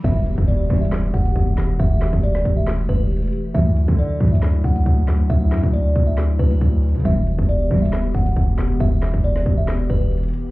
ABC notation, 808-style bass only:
X:1
M:4/4
L:1/16
Q:1/4=137
K:Em
V:1 name="808-style bass" clef=bass
E,,,3 E,,,3 E,,,4 E,,,2 E,,,2 E,,,2 | E,,,3 E,,,3 E,,,4 E,,,4 z2 | D,,3 D,3 D,,4 D,,2 D,,2 D,,2 | D,,2 F,, D,,3 D,,4 D,,2 D,,3 D, |
E,,,3 E,,,3 E,,,4 E,,,2 E,,,2 E,,,2 | E,,,3 E,,,3 E,,,4 E,,,4 z2 |]